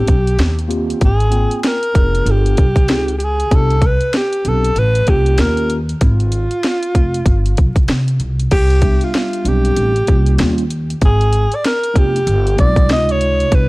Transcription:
Already playing: tine electric piano B3 C4 D4 G4, alto saxophone G4
0.08 upright bass B1, kick, closed hi-hat
0.27 closed hi-hat
0.38 upright bass D#2, snare, closed hi-hat
0.59 closed hi-hat
0.68 tine electric piano A#3 C4 F4 G4, closed hi-hat
0.90 closed hi-hat
1.01 upright bass G#1, kick, closed hi-hat
1.05 alto saxophone G#4
1.20 closed hi-hat
1.30 tine electric piano A#3 C4 F4 G5, closed hi-hat
1.51 closed hi-hat
1.63 snare, closed hi-hat
1.68 alto saxophone A#4
1.83 closed hi-hat
1.94 upright bass F1, tine electric piano B3 D4 F4 G#4, kick, closed hi-hat
2.15 closed hi-hat
2.26 upright bass G1, tine electric piano B3 D4 F4 A4, closed hi-hat
2.31 alto saxophone G4
2.46 closed hi-hat
2.57 upright bass B1, kick, closed hi-hat
2.76 kick, closed hi-hat
2.87 upright bass C#2, tine electric piano C4 D#4 F4 G#4, snare, closed hi-hat
3.08 closed hi-hat
3.18 alto saxophone G4, closed hi-hat
3.24 alto saxophone G#4
3.40 closed hi-hat
3.51 upright bass C2, tine electric piano B3 D4 E4 G4, kick, closed hi-hat
3.56 alto saxophone A4
3.70 closed hi-hat
3.82 kick, closed hi-hat
3.86 alto saxophone B4
4.01 closed hi-hat
4.13 alto saxophone G4, snare, closed hi-hat
4.33 closed hi-hat
4.44 upright bass B1, tine electric piano B3 C4 D4 G4, alto saxophone A4, closed hi-hat
4.64 closed hi-hat
4.76 upright bass A1, alto saxophone B4, closed hi-hat
4.95 closed hi-hat
5.06 upright bass C2, tine electric piano A#3 C#4 F4 G4, alto saxophone G4, kick, closed hi-hat
5.26 closed hi-hat
5.37 upright bass D#2, tine electric piano A#3 C#4 F4 G4, alto saxophone A#4, snare, closed hi-hat
5.57 closed hi-hat
5.70 closed hi-hat
5.89 closed hi-hat
6.01 upright bass G#1, alto saxophone F4, kick, closed hi-hat
6.20 closed hi-hat
6.32 closed hi-hat
6.51 closed hi-hat
6.63 snare, closed hi-hat
6.83 closed hi-hat
6.95 upright bass F1, kick, closed hi-hat
7.14 closed hi-hat
7.26 upright bass G1, kick, closed hi-hat
7.46 closed hi-hat
7.57 upright bass B1, kick, closed hi-hat
7.75 upright bass C2, kick, closed hi-hat
7.88 upright bass C3, snare, closed hi-hat
8.08 closed hi-hat
8.20 upright bass C2, closed hi-hat
8.40 closed hi-hat
8.51 upright bass C2, alto saxophone G4, kick, closed hi-hat, crash
8.70 closed hi-hat
8.82 tine electric piano G3 B3 D4 E5, kick, closed hi-hat
9.01 alto saxophone F4, closed hi-hat
9.14 snare, closed hi-hat
9.33 closed hi-hat
9.44 upright bass B1, tine electric piano G3 B3 C4 D4, alto saxophone G4, closed hi-hat
9.65 closed hi-hat
9.76 upright bass A1, closed hi-hat
9.96 closed hi-hat
10.07 upright bass C2, tine electric piano G3 A#3 C#4 F4, kick, closed hi-hat
10.26 closed hi-hat
10.38 upright bass D#2, tine electric piano G3 A#3 C#4 F4, snare, closed hi-hat
10.58 closed hi-hat
10.71 closed hi-hat
10.90 closed hi-hat
11.01 upright bass G#1, alto saxophone G#4, kick, closed hi-hat
11.21 closed hi-hat
11.33 closed hi-hat
11.52 alto saxophone D5, closed hi-hat
11.64 alto saxophone A#4, snare, closed hi-hat
11.83 closed hi-hat
11.94 upright bass F1, tine electric piano A3 B3 D4 F4, kick, closed hi-hat
11.98 alto saxophone G4
12.16 closed hi-hat
12.27 upright bass G1, closed hi-hat
12.47 closed hi-hat
12.56 upright bass B1, tine electric piano G#3 C4 D#4 F4, alto saxophone D5, kick, closed hi-hat
12.76 kick, closed hi-hat
12.88 upright bass C#2, tine electric piano C3 G#3 D#4 E4, snare, closed hi-hat
12.93 tine electric piano F4, alto saxophone D#5
13.09 alto saxophone C#5, closed hi-hat
13.21 closed hi-hat
13.40 closed hi-hat
13.50 upright bass C2, tine electric piano G3 B3 D4 E4, kick, closed hi-hat
13.54 alto saxophone B4

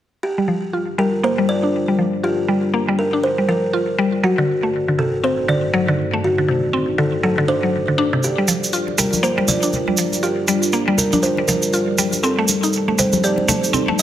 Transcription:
0.23 analog synth pad G3 D4 F4 A#4 D5, kalimba G4
0.38 synth pluck G3
0.48 synth pluck F3
0.73 synth pluck F4
0.98 synth pluck G3, kalimba A#4
1.23 synth pluck A#3, kalimba C5
1.38 synth pluck G3
1.49 kalimba D5
1.63 synth pluck D4
1.88 synth pluck G3
1.99 synth pluck F3
2.23 synth pluck F4, kalimba G4
2.48 synth pluck G3
2.74 synth pluck A#3
2.88 synth pluck G3
2.99 kalimba A#4
3.13 synth pluck D4
3.24 kalimba C5
3.38 synth pluck G3
3.48 synth pluck F3, kalimba A#4
3.73 synth pluck F4
3.98 synth pluck G3
4.23 analog synth pad G2 A3 D#4 F#4 C5, synth pluck F#3, kalimba F#4
4.38 synth pluck D3
4.63 synth pluck A3
4.88 synth pluck D3
4.98 synth pluck C3, kalimba A4
5.24 synth pluck C4, kalimba C5
5.48 synth pluck D3, kalimba D5
5.74 synth pluck F#3
5.88 synth pluck D3
6.13 synth pluck A3
6.24 kalimba F#4
6.38 synth pluck D3
6.48 synth pluck C3
6.73 synth pluck C4
6.98 synth pluck D3, kalimba A4
7.23 synth pluck F#3, kalimba A4
7.38 synth pluck D3
7.48 synth pluck D4, kalimba C5
7.63 synth pluck F#3
7.88 synth pluck D3
7.98 synth pluck D4
8.13 synth pluck C3
8.23 analog synth pad G3 D4 F4 A#4, kalimba G4, cabasa
8.38 synth pluck G3
8.48 synth pluck F3, muted conga, cabasa
8.64 cabasa
8.73 synth pluck F4, cabasa
8.88 muted conga
8.98 synth pluck G3, kalimba A#4, low conga, cabasa
9.13 high conga, cabasa
9.23 synth pluck A#3, kalimba C5, cabasa
9.38 synth pluck G3, muted conga
9.48 kalimba D5, high conga, low conga, cabasa
9.62 synth pluck D4, cabasa
9.73 muted conga, low conga, cabasa
9.88 synth pluck G3, high conga
9.97 synth pluck F3, cabasa
10.12 muted conga, cabasa
10.23 synth pluck F4, kalimba G4, cabasa
10.48 synth pluck G3, muted conga, cabasa
10.63 cabasa
10.72 synth pluck A#3, cabasa
10.88 synth pluck G3, muted conga
10.98 kalimba A#4, low conga, cabasa
11.12 synth pluck D4, high conga, cabasa
11.23 kalimba C5, high conga, cabasa
11.37 synth pluck G3, muted conga
11.48 synth pluck F3, kalimba A#4, low conga, cabasa
11.62 cabasa
11.73 synth pluck F4, muted conga, cabasa
11.98 synth pluck G3, high conga, cabasa
12.13 muted conga, cabasa
12.23 synth pluck C4, analog synth pad C4 D#4 A4 C5, kalimba A4, cabasa
12.38 synth pluck A3
12.48 muted conga, cabasa
12.63 synth pluck D#4, cabasa
12.73 cabasa
12.88 synth pluck A3, muted conga
12.98 synth pluck G3, kalimba C5, low conga, cabasa
13.13 high conga, cabasa
13.24 synth pluck G4, kalimba D5, cabasa
13.38 muted conga
13.48 synth pluck A3, high conga, low conga, cabasa
13.64 cabasa
13.73 synth pluck C4, muted conga, low conga, cabasa
13.88 synth pluck A3, high conga
13.99 cabasa

